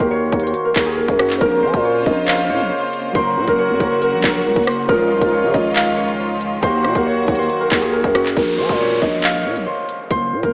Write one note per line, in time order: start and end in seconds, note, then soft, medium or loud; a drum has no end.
0.00 0.31 D#2 loud
0.00 0.26 D#3 medium
0.00 0.27 A#3 loud
0.00 0.29 F#4 loud
0.00 0.65 A#4 medium
0.00 0.17 C5 loud
0.00 0.37 D#5 medium
0.00 0.47 F5 loud
0.11 0.49 C#5 medium
0.29 0.53 D#2 loud
0.29 0.71 D#3 medium
0.29 0.72 A#3 medium
0.29 kick loud
0.29 closed hi-hat medium
0.35 0.74 F#4 medium
0.40 1.62 C5 medium
0.40 closed hi-hat medium
0.47 closed hi-hat medium
0.54 closed hi-hat medium
0.65 0.97 A#4 medium
0.73 1.07 D#2 loud
0.73 1.34 D#3 medium
0.73 1.36 A#3 medium
0.73 kick loud
0.73 clap loud
0.79 1.37 F#4 medium
0.86 3.13 G#4 medium
0.86 closed hi-hat medium
0.98 1.41 A#4 medium
1.08 1.40 F#2 loud
1.08 kick loud
1.08 closed hi-hat medium
1.19 2.35 F#4 medium
1.19 cross-stick loud
1.19 closed hi-hat medium
1.30 clap medium
1.38 1.64 A#1 loud
1.38 3.13 C#3 medium
1.38 4.85 A#3 medium
1.38 1.99 C4 loud
1.38 2.01 C#4 medium
1.38 3.13 F4 medium
1.38 3.48 A#4 loud
1.38 3.13 C5 medium
1.38 kick loud
1.38 closed hi-hat medium
1.44 2.02 A#4 loud
1.63 1.73 F3 loud
1.63 1.91 C5 medium
1.74 2.05 A#2 loud
1.74 kick medium
1.74 closed hi-hat medium
1.85 2.49 C#5 medium
2.04 2.51 A#1 loud
2.04 2.85 C4 medium
2.04 2.86 C#4 medium
2.04 3.85 D#5 medium
2.04 kick loud
2.04 closed hi-hat medium
2.10 2.88 A#4 medium
2.28 3.95 F5 medium
2.28 clap loud
2.28 closed hi-hat medium
2.50 2.62 A#2 loud
2.50 2.77 C#5 medium
2.60 2.71 A#1 loud
2.60 closed hi-hat medium
2.71 3.15 C5 medium
2.93 closed hi-hat medium
3.12 3.38 F#1 loud
3.12 4.87 C#3 medium
3.12 3.73 F#3 loud
3.12 4.87 F#3 medium
3.12 3.75 C#4 medium
3.12 4.87 F#4 medium
3.12 3.64 C5 loud
3.12 kick loud
3.12 closed hi-hat medium
3.18 3.76 A#4 loud
3.37 3.47 A#2 loud
3.48 3.71 F#1 loud
3.48 4.01 A#4 medium
3.48 kick medium
3.48 closed hi-hat medium
3.58 3.97 C#5 medium
3.69 3.80 F#2 loud
3.78 4.14 F#1 loud
3.78 4.18 F#3 medium
3.78 4.20 C#4 medium
3.78 kick loud
3.78 closed hi-hat medium
3.83 4.22 A#4 medium
3.91 4.67 C5 medium
4.02 4.34 A#4 medium
4.02 closed hi-hat medium
4.13 4.23 A#1 loud
4.20 4.47 A#1 loud
4.20 4.82 F#3 medium
4.20 4.83 C#4 medium
4.20 kick loud
4.20 clap loud
4.26 4.84 A#4 medium
4.34 4.88 A#4 medium
4.34 closed hi-hat medium
4.45 4.56 C#2 loud
4.56 4.88 F#1 loud
4.56 kick loud
4.56 closed hi-hat medium
4.64 5.10 C5 medium
4.64 cross-stick loud
4.64 closed hi-hat medium
4.71 closed hi-hat medium
4.87 5.12 C#2 loud
4.87 8.33 D#3 medium
4.87 5.48 F3 loud
4.87 6.61 G#3 medium
4.87 6.61 C#4 medium
4.87 5.49 C#4 medium
4.87 6.61 F4 medium
4.87 6.95 A#4 loud
4.87 kick loud
4.87 closed hi-hat medium
4.92 5.50 D#4 loud
5.10 5.21 C2 loud
5.10 5.39 C5 medium
5.21 5.45 C#2 loud
5.21 kick medium
5.21 closed hi-hat medium
5.33 5.96 C#5 medium
5.43 5.54 C#3 loud
5.51 6.59 C#2 loud
5.51 6.33 F3 medium
5.51 6.34 C#4 medium
5.51 7.32 D#5 medium
5.51 kick loud
5.51 closed hi-hat medium
5.57 6.35 D#4 medium
5.76 7.43 F5 loud
5.76 clap loud
5.76 closed hi-hat medium
5.97 6.26 C#5 medium
6.08 closed hi-hat medium
6.20 6.63 C5 medium
6.41 closed hi-hat medium
6.61 6.86 D#2 loud
6.61 7.22 D#3 medium
6.61 8.35 F#3 medium
6.61 8.35 A#3 medium
6.61 7.23 A#3 loud
6.61 8.35 F#4 medium
6.61 7.12 C5 loud
6.61 kick loud
6.61 closed hi-hat medium
6.66 7.24 F#4 loud
6.84 6.95 A#2 loud
6.84 cross-stick medium
6.95 7.27 D#2 loud
6.95 7.60 A#4 medium
6.95 kick medium
6.95 closed hi-hat medium
7.06 7.45 C#5 medium
7.25 7.49 D#2 loud
7.25 7.66 D#3 medium
7.25 7.68 A#3 medium
7.25 kick loud
7.25 closed hi-hat medium
7.31 7.69 F#4 medium
7.35 8.58 C5 medium
7.35 closed hi-hat medium
7.43 closed hi-hat medium
7.50 closed hi-hat medium
7.61 7.93 A#4 medium
7.68 8.03 D#2 loud
7.68 8.30 D#3 medium
7.68 8.31 A#3 medium
7.68 kick loud
7.68 clap loud
7.74 8.33 F#4 medium
7.81 10.09 G#4 medium
7.81 closed hi-hat medium
7.93 8.36 A#4 medium
8.04 8.35 F#2 loud
8.04 kick loud
8.04 closed hi-hat medium
8.15 9.30 F#4 medium
8.15 cross-stick loud
8.15 closed hi-hat medium
8.26 clap medium
8.37 8.60 A#1 loud
8.37 10.43 A#4 loud
8.37 kick loud
8.37 closed hi-hat medium
8.37 downlifter medium
8.58 8.69 F3 loud
8.58 8.86 C5 medium
8.69 9.01 A#2 loud
8.69 kick medium
8.69 closed hi-hat medium
8.80 9.45 C#5 medium
9.02 9.47 A#1 loud
9.02 10.53 D#5 medium
9.02 kick medium
9.02 closed hi-hat medium
9.23 10.53 F5 medium
9.23 clap loud
9.23 closed hi-hat medium
9.45 9.58 A#2 medium
9.45 9.73 C#5 medium
9.56 9.67 A#1 loud
9.56 closed hi-hat medium
9.67 10.10 C5 medium
9.89 closed hi-hat medium
10.11 10.34 F#1 loud
10.11 10.53 C5 loud
10.11 kick loud
10.11 closed hi-hat medium
10.32 10.43 A#2 loud
10.43 10.53 F#1 loud
10.43 10.53 A#4 medium
10.43 kick medium
10.43 closed hi-hat medium